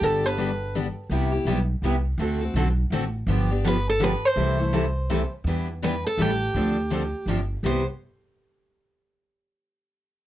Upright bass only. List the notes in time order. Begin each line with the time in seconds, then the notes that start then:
0.01 G1
1.10 C2
1.45 B1
1.82 C2
2.18 D2
2.54 B1
2.90 A1
3.26 G1
4.36 C2
5.44 E2
6.18 A1
6.54 D2
7.26 G1
7.63 C2